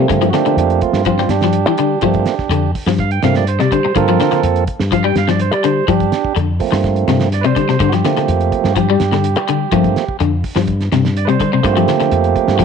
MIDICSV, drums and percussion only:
0, 0, Header, 1, 2, 480
1, 0, Start_track
1, 0, Key_signature, -2, "minor"
1, 0, Tempo, 480769
1, 93, Time_signature, 4, 2, 24, 8
1, 12628, End_track
2, 0, Start_track
2, 0, Title_t, "Drums"
2, 98, Note_on_c, 9, 36, 88
2, 98, Note_on_c, 9, 42, 70
2, 197, Note_off_c, 9, 36, 0
2, 198, Note_off_c, 9, 42, 0
2, 218, Note_on_c, 9, 42, 35
2, 318, Note_off_c, 9, 42, 0
2, 332, Note_on_c, 9, 38, 66
2, 332, Note_on_c, 9, 42, 52
2, 432, Note_off_c, 9, 38, 0
2, 432, Note_off_c, 9, 42, 0
2, 456, Note_on_c, 9, 42, 34
2, 556, Note_off_c, 9, 42, 0
2, 579, Note_on_c, 9, 42, 60
2, 679, Note_off_c, 9, 42, 0
2, 698, Note_on_c, 9, 42, 32
2, 798, Note_off_c, 9, 42, 0
2, 812, Note_on_c, 9, 42, 46
2, 819, Note_on_c, 9, 36, 62
2, 912, Note_off_c, 9, 42, 0
2, 919, Note_off_c, 9, 36, 0
2, 932, Note_on_c, 9, 38, 67
2, 1032, Note_off_c, 9, 38, 0
2, 1049, Note_on_c, 9, 42, 65
2, 1059, Note_on_c, 9, 36, 63
2, 1149, Note_off_c, 9, 42, 0
2, 1158, Note_off_c, 9, 36, 0
2, 1176, Note_on_c, 9, 38, 26
2, 1276, Note_off_c, 9, 38, 0
2, 1289, Note_on_c, 9, 38, 70
2, 1289, Note_on_c, 9, 42, 51
2, 1389, Note_off_c, 9, 38, 0
2, 1389, Note_off_c, 9, 42, 0
2, 1409, Note_on_c, 9, 38, 62
2, 1409, Note_on_c, 9, 42, 27
2, 1508, Note_off_c, 9, 38, 0
2, 1508, Note_off_c, 9, 42, 0
2, 1524, Note_on_c, 9, 42, 63
2, 1624, Note_off_c, 9, 42, 0
2, 1658, Note_on_c, 9, 42, 28
2, 1758, Note_off_c, 9, 42, 0
2, 1772, Note_on_c, 9, 42, 53
2, 1872, Note_off_c, 9, 42, 0
2, 2010, Note_on_c, 9, 42, 61
2, 2022, Note_on_c, 9, 36, 82
2, 2110, Note_off_c, 9, 42, 0
2, 2122, Note_off_c, 9, 36, 0
2, 2134, Note_on_c, 9, 42, 33
2, 2143, Note_on_c, 9, 36, 69
2, 2234, Note_off_c, 9, 42, 0
2, 2243, Note_off_c, 9, 36, 0
2, 2253, Note_on_c, 9, 38, 72
2, 2253, Note_on_c, 9, 42, 45
2, 2353, Note_off_c, 9, 38, 0
2, 2353, Note_off_c, 9, 42, 0
2, 2379, Note_on_c, 9, 38, 26
2, 2386, Note_on_c, 9, 36, 59
2, 2479, Note_off_c, 9, 38, 0
2, 2486, Note_off_c, 9, 36, 0
2, 2503, Note_on_c, 9, 42, 61
2, 2603, Note_off_c, 9, 42, 0
2, 2747, Note_on_c, 9, 46, 62
2, 2748, Note_on_c, 9, 36, 59
2, 2847, Note_off_c, 9, 46, 0
2, 2848, Note_off_c, 9, 36, 0
2, 2865, Note_on_c, 9, 38, 69
2, 2965, Note_off_c, 9, 38, 0
2, 2980, Note_on_c, 9, 38, 24
2, 2980, Note_on_c, 9, 42, 59
2, 2987, Note_on_c, 9, 36, 66
2, 3079, Note_off_c, 9, 38, 0
2, 3079, Note_off_c, 9, 42, 0
2, 3086, Note_off_c, 9, 36, 0
2, 3106, Note_on_c, 9, 42, 33
2, 3206, Note_off_c, 9, 42, 0
2, 3221, Note_on_c, 9, 38, 73
2, 3221, Note_on_c, 9, 42, 50
2, 3321, Note_off_c, 9, 38, 0
2, 3321, Note_off_c, 9, 42, 0
2, 3341, Note_on_c, 9, 38, 65
2, 3341, Note_on_c, 9, 42, 30
2, 3441, Note_off_c, 9, 38, 0
2, 3441, Note_off_c, 9, 42, 0
2, 3466, Note_on_c, 9, 42, 70
2, 3566, Note_off_c, 9, 42, 0
2, 3593, Note_on_c, 9, 38, 26
2, 3593, Note_on_c, 9, 42, 31
2, 3693, Note_off_c, 9, 38, 0
2, 3693, Note_off_c, 9, 42, 0
2, 3711, Note_on_c, 9, 36, 66
2, 3711, Note_on_c, 9, 42, 55
2, 3811, Note_off_c, 9, 36, 0
2, 3811, Note_off_c, 9, 42, 0
2, 3948, Note_on_c, 9, 42, 73
2, 3951, Note_on_c, 9, 36, 89
2, 4048, Note_off_c, 9, 42, 0
2, 4051, Note_off_c, 9, 36, 0
2, 4071, Note_on_c, 9, 42, 32
2, 4171, Note_off_c, 9, 42, 0
2, 4190, Note_on_c, 9, 38, 64
2, 4190, Note_on_c, 9, 42, 49
2, 4289, Note_off_c, 9, 38, 0
2, 4289, Note_off_c, 9, 42, 0
2, 4308, Note_on_c, 9, 38, 27
2, 4308, Note_on_c, 9, 42, 34
2, 4408, Note_off_c, 9, 38, 0
2, 4408, Note_off_c, 9, 42, 0
2, 4427, Note_on_c, 9, 42, 59
2, 4527, Note_off_c, 9, 42, 0
2, 4551, Note_on_c, 9, 42, 31
2, 4651, Note_off_c, 9, 42, 0
2, 4666, Note_on_c, 9, 42, 48
2, 4671, Note_on_c, 9, 36, 61
2, 4766, Note_off_c, 9, 42, 0
2, 4771, Note_off_c, 9, 36, 0
2, 4788, Note_on_c, 9, 38, 62
2, 4887, Note_off_c, 9, 38, 0
2, 4910, Note_on_c, 9, 42, 65
2, 4911, Note_on_c, 9, 36, 71
2, 5010, Note_off_c, 9, 42, 0
2, 5011, Note_off_c, 9, 36, 0
2, 5148, Note_on_c, 9, 38, 71
2, 5148, Note_on_c, 9, 42, 53
2, 5248, Note_off_c, 9, 38, 0
2, 5248, Note_off_c, 9, 42, 0
2, 5271, Note_on_c, 9, 38, 68
2, 5271, Note_on_c, 9, 42, 32
2, 5371, Note_off_c, 9, 38, 0
2, 5371, Note_off_c, 9, 42, 0
2, 5386, Note_on_c, 9, 42, 64
2, 5486, Note_off_c, 9, 42, 0
2, 5512, Note_on_c, 9, 42, 29
2, 5612, Note_off_c, 9, 42, 0
2, 5628, Note_on_c, 9, 42, 54
2, 5728, Note_off_c, 9, 42, 0
2, 5871, Note_on_c, 9, 42, 58
2, 5872, Note_on_c, 9, 36, 86
2, 5970, Note_off_c, 9, 42, 0
2, 5972, Note_off_c, 9, 36, 0
2, 5993, Note_on_c, 9, 42, 33
2, 5994, Note_on_c, 9, 36, 73
2, 6093, Note_off_c, 9, 42, 0
2, 6094, Note_off_c, 9, 36, 0
2, 6112, Note_on_c, 9, 38, 66
2, 6112, Note_on_c, 9, 42, 46
2, 6212, Note_off_c, 9, 38, 0
2, 6212, Note_off_c, 9, 42, 0
2, 6236, Note_on_c, 9, 36, 64
2, 6335, Note_off_c, 9, 36, 0
2, 6353, Note_on_c, 9, 42, 52
2, 6453, Note_off_c, 9, 42, 0
2, 6591, Note_on_c, 9, 46, 57
2, 6593, Note_on_c, 9, 36, 58
2, 6690, Note_off_c, 9, 46, 0
2, 6693, Note_off_c, 9, 36, 0
2, 6710, Note_on_c, 9, 38, 57
2, 6810, Note_off_c, 9, 38, 0
2, 6830, Note_on_c, 9, 36, 60
2, 6830, Note_on_c, 9, 38, 28
2, 6830, Note_on_c, 9, 42, 61
2, 6930, Note_off_c, 9, 36, 0
2, 6930, Note_off_c, 9, 38, 0
2, 6930, Note_off_c, 9, 42, 0
2, 6950, Note_on_c, 9, 42, 31
2, 7050, Note_off_c, 9, 42, 0
2, 7067, Note_on_c, 9, 38, 78
2, 7067, Note_on_c, 9, 42, 48
2, 7167, Note_off_c, 9, 38, 0
2, 7167, Note_off_c, 9, 42, 0
2, 7187, Note_on_c, 9, 38, 67
2, 7187, Note_on_c, 9, 42, 29
2, 7287, Note_off_c, 9, 38, 0
2, 7287, Note_off_c, 9, 42, 0
2, 7309, Note_on_c, 9, 38, 27
2, 7309, Note_on_c, 9, 42, 66
2, 7409, Note_off_c, 9, 38, 0
2, 7409, Note_off_c, 9, 42, 0
2, 7431, Note_on_c, 9, 42, 28
2, 7530, Note_off_c, 9, 42, 0
2, 7550, Note_on_c, 9, 42, 55
2, 7551, Note_on_c, 9, 36, 69
2, 7650, Note_off_c, 9, 42, 0
2, 7651, Note_off_c, 9, 36, 0
2, 7671, Note_on_c, 9, 38, 29
2, 7771, Note_off_c, 9, 38, 0
2, 7787, Note_on_c, 9, 42, 64
2, 7790, Note_on_c, 9, 36, 96
2, 7886, Note_off_c, 9, 42, 0
2, 7890, Note_off_c, 9, 36, 0
2, 7913, Note_on_c, 9, 38, 30
2, 7913, Note_on_c, 9, 42, 37
2, 8012, Note_off_c, 9, 38, 0
2, 8012, Note_off_c, 9, 42, 0
2, 8033, Note_on_c, 9, 38, 70
2, 8033, Note_on_c, 9, 42, 53
2, 8133, Note_off_c, 9, 38, 0
2, 8133, Note_off_c, 9, 42, 0
2, 8153, Note_on_c, 9, 38, 25
2, 8153, Note_on_c, 9, 42, 35
2, 8253, Note_off_c, 9, 38, 0
2, 8253, Note_off_c, 9, 42, 0
2, 8270, Note_on_c, 9, 42, 61
2, 8370, Note_off_c, 9, 42, 0
2, 8392, Note_on_c, 9, 42, 35
2, 8492, Note_off_c, 9, 42, 0
2, 8509, Note_on_c, 9, 36, 62
2, 8510, Note_on_c, 9, 42, 46
2, 8608, Note_off_c, 9, 36, 0
2, 8610, Note_off_c, 9, 42, 0
2, 8627, Note_on_c, 9, 38, 67
2, 8727, Note_off_c, 9, 38, 0
2, 8745, Note_on_c, 9, 42, 68
2, 8748, Note_on_c, 9, 36, 66
2, 8844, Note_off_c, 9, 42, 0
2, 8848, Note_off_c, 9, 36, 0
2, 8985, Note_on_c, 9, 38, 71
2, 8985, Note_on_c, 9, 42, 55
2, 9085, Note_off_c, 9, 38, 0
2, 9085, Note_off_c, 9, 42, 0
2, 9107, Note_on_c, 9, 38, 69
2, 9107, Note_on_c, 9, 42, 31
2, 9207, Note_off_c, 9, 38, 0
2, 9207, Note_off_c, 9, 42, 0
2, 9225, Note_on_c, 9, 42, 73
2, 9325, Note_off_c, 9, 42, 0
2, 9341, Note_on_c, 9, 42, 31
2, 9441, Note_off_c, 9, 42, 0
2, 9464, Note_on_c, 9, 42, 57
2, 9564, Note_off_c, 9, 42, 0
2, 9701, Note_on_c, 9, 42, 64
2, 9704, Note_on_c, 9, 36, 85
2, 9801, Note_off_c, 9, 42, 0
2, 9804, Note_off_c, 9, 36, 0
2, 9827, Note_on_c, 9, 36, 67
2, 9828, Note_on_c, 9, 42, 32
2, 9927, Note_off_c, 9, 36, 0
2, 9928, Note_off_c, 9, 42, 0
2, 9947, Note_on_c, 9, 38, 61
2, 9947, Note_on_c, 9, 42, 47
2, 10047, Note_off_c, 9, 38, 0
2, 10047, Note_off_c, 9, 42, 0
2, 10068, Note_on_c, 9, 36, 67
2, 10168, Note_off_c, 9, 36, 0
2, 10185, Note_on_c, 9, 42, 52
2, 10285, Note_off_c, 9, 42, 0
2, 10423, Note_on_c, 9, 46, 65
2, 10424, Note_on_c, 9, 36, 61
2, 10522, Note_off_c, 9, 46, 0
2, 10524, Note_off_c, 9, 36, 0
2, 10538, Note_on_c, 9, 38, 61
2, 10638, Note_off_c, 9, 38, 0
2, 10658, Note_on_c, 9, 42, 65
2, 10663, Note_on_c, 9, 36, 64
2, 10758, Note_off_c, 9, 42, 0
2, 10763, Note_off_c, 9, 36, 0
2, 10788, Note_on_c, 9, 38, 29
2, 10788, Note_on_c, 9, 42, 31
2, 10888, Note_off_c, 9, 38, 0
2, 10888, Note_off_c, 9, 42, 0
2, 10905, Note_on_c, 9, 38, 78
2, 10905, Note_on_c, 9, 42, 52
2, 11005, Note_off_c, 9, 38, 0
2, 11005, Note_off_c, 9, 42, 0
2, 11031, Note_on_c, 9, 38, 67
2, 11031, Note_on_c, 9, 42, 28
2, 11131, Note_off_c, 9, 38, 0
2, 11131, Note_off_c, 9, 42, 0
2, 11147, Note_on_c, 9, 42, 61
2, 11247, Note_off_c, 9, 42, 0
2, 11268, Note_on_c, 9, 42, 26
2, 11368, Note_off_c, 9, 42, 0
2, 11382, Note_on_c, 9, 42, 52
2, 11383, Note_on_c, 9, 36, 69
2, 11482, Note_off_c, 9, 42, 0
2, 11483, Note_off_c, 9, 36, 0
2, 11621, Note_on_c, 9, 36, 85
2, 11622, Note_on_c, 9, 42, 61
2, 11721, Note_off_c, 9, 36, 0
2, 11722, Note_off_c, 9, 42, 0
2, 11746, Note_on_c, 9, 42, 34
2, 11846, Note_off_c, 9, 42, 0
2, 11860, Note_on_c, 9, 38, 67
2, 11860, Note_on_c, 9, 42, 44
2, 11960, Note_off_c, 9, 38, 0
2, 11960, Note_off_c, 9, 42, 0
2, 11980, Note_on_c, 9, 38, 27
2, 11980, Note_on_c, 9, 42, 36
2, 12080, Note_off_c, 9, 38, 0
2, 12080, Note_off_c, 9, 42, 0
2, 12096, Note_on_c, 9, 42, 62
2, 12196, Note_off_c, 9, 42, 0
2, 12220, Note_on_c, 9, 42, 33
2, 12320, Note_off_c, 9, 42, 0
2, 12336, Note_on_c, 9, 36, 60
2, 12338, Note_on_c, 9, 42, 47
2, 12436, Note_off_c, 9, 36, 0
2, 12438, Note_off_c, 9, 42, 0
2, 12457, Note_on_c, 9, 38, 68
2, 12556, Note_off_c, 9, 38, 0
2, 12575, Note_on_c, 9, 36, 71
2, 12576, Note_on_c, 9, 42, 76
2, 12628, Note_off_c, 9, 36, 0
2, 12628, Note_off_c, 9, 42, 0
2, 12628, End_track
0, 0, End_of_file